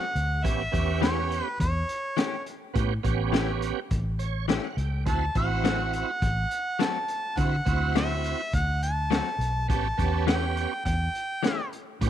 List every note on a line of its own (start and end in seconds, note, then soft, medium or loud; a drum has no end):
0.00 0.46 F#5 loud
0.15 0.44 D2 medium
0.15 closed hi-hat medium
0.44 0.67 A1 medium
0.44 0.63 B3 medium
0.44 0.63 C#4 medium
0.44 0.63 G4 medium
0.44 1.02 E5 medium
0.44 kick medium
0.44 closed hi-hat medium
0.72 1.40 E2 medium
0.72 1.48 B3 medium
0.72 1.48 C#4 medium
0.72 1.49 G4 medium
0.72 kick medium
0.72 closed hi-hat medium
1.02 1.19 E3 medium
1.02 1.20 A3 medium
1.02 1.20 C#4 medium
1.02 1.20 G4 medium
1.02 1.44 C#5 medium
1.02 snare loud
1.02 closed hi-hat medium
1.32 closed hi-hat medium
1.44 1.56 B4 medium
1.60 1.82 E2 medium
1.60 2.43 C#5 medium
1.60 kick medium
1.60 closed hi-hat medium
1.89 closed hi-hat medium
2.17 2.35 E3 medium
2.17 2.35 A3 medium
2.17 2.35 C#4 medium
2.17 2.35 G4 medium
2.17 snare loud
2.17 closed hi-hat medium
2.46 closed hi-hat medium
2.74 2.98 A2 medium
2.74 2.93 B3 medium
2.74 2.94 C#4 medium
2.74 2.94 G4 medium
2.74 kick loud
2.74 closed hi-hat medium
3.03 3.71 A1 medium
3.03 3.79 B3 medium
3.03 3.80 C#4 medium
3.03 3.80 G4 medium
3.03 kick medium
3.03 closed hi-hat medium
3.32 3.50 E3 medium
3.32 3.50 A3 medium
3.32 3.51 C#4 medium
3.32 3.51 G4 medium
3.32 snare loud
3.32 closed hi-hat medium
3.62 closed hi-hat medium
3.91 4.58 A1 medium
3.91 kick medium
3.91 closed hi-hat medium
4.19 4.46 C#5 medium
4.19 closed hi-hat medium
4.48 4.66 E3 medium
4.48 4.66 A3 medium
4.48 4.66 C#4 medium
4.48 4.67 G4 medium
4.48 4.62 E5 medium
4.48 snare loud
4.48 closed hi-hat medium
4.63 4.77 F#5 medium
4.77 5.06 C#2 medium
4.77 5.04 G5 medium
4.77 closed hi-hat medium
5.06 5.28 D2 medium
5.06 5.25 C4 medium
5.06 5.25 E4 medium
5.06 5.26 F#4 medium
5.06 5.34 A5 medium
5.06 kick loud
5.06 closed hi-hat medium
5.35 6.02 A1 medium
5.35 6.11 C4 medium
5.35 6.11 E4 medium
5.35 6.11 F#4 medium
5.35 5.90 F#5 medium
5.35 kick medium
5.35 closed hi-hat medium
5.64 5.81 F#3 medium
5.64 5.82 A3 medium
5.64 5.82 C4 medium
5.64 5.82 F#4 medium
5.64 snare loud
5.64 closed hi-hat medium
5.93 6.83 F#5 medium
5.93 closed hi-hat medium
6.22 6.44 A1 medium
6.22 kick medium
6.22 closed hi-hat medium
6.51 closed hi-hat medium
6.79 6.97 F#3 medium
6.79 6.97 A3 medium
6.79 6.97 C4 medium
6.79 6.98 F#4 medium
6.79 7.40 A5 medium
6.79 snare loud
6.79 closed hi-hat medium
7.08 closed hi-hat medium
7.37 7.60 D3 medium
7.37 7.56 C4 medium
7.37 7.56 E4 medium
7.37 7.57 F#4 medium
7.37 7.96 F#5 medium
7.37 kick loud
7.37 closed hi-hat medium
7.65 8.33 D2 medium
7.65 8.41 C4 medium
7.65 8.42 E4 medium
7.65 8.42 F#4 medium
7.65 kick medium
7.65 closed hi-hat medium
7.95 8.13 F#3 medium
7.95 8.13 A3 medium
7.95 8.13 C4 medium
7.95 8.13 F#4 medium
7.95 8.50 E5 medium
7.95 snare loud
7.95 closed hi-hat medium
8.24 closed hi-hat medium
8.53 9.20 D2 medium
8.53 8.81 F#5 medium
8.53 kick medium
8.53 closed hi-hat medium
8.83 9.65 A5 medium
8.83 closed hi-hat medium
9.11 9.28 F#3 medium
9.11 9.28 A3 medium
9.11 9.29 C4 medium
9.11 9.29 F#4 medium
9.11 snare loud
9.11 closed hi-hat medium
9.38 9.70 B1 medium
9.38 closed hi-hat medium
9.68 9.91 A1 medium
9.68 9.87 B3 medium
9.68 9.88 C#4 medium
9.68 9.88 G4 medium
9.68 10.23 A5 medium
9.68 kick loud
9.68 closed hi-hat medium
9.97 10.65 E2 medium
9.97 10.73 B3 medium
9.97 10.74 C#4 medium
9.97 10.74 G4 medium
9.97 kick medium
9.97 closed hi-hat medium
10.27 10.44 E3 medium
10.27 10.44 A3 medium
10.27 10.45 C#4 medium
10.27 10.45 G4 medium
10.27 10.81 G5 medium
10.27 snare loud
10.27 closed hi-hat medium
10.57 closed hi-hat medium
10.85 11.07 E2 medium
10.85 11.67 G5 medium
10.85 kick medium
10.85 closed hi-hat medium
11.15 closed hi-hat soft
11.43 11.60 E3 medium
11.43 11.60 A3 medium
11.43 11.60 C#4 medium
11.43 11.61 G4 medium
11.43 snare loud
11.43 closed hi-hat medium
11.73 closed hi-hat medium
12.01 12.10 A2 medium
12.01 12.10 B3 medium
12.01 12.10 C#4 medium
12.01 12.10 G4 medium
12.01 kick medium
12.01 closed hi-hat medium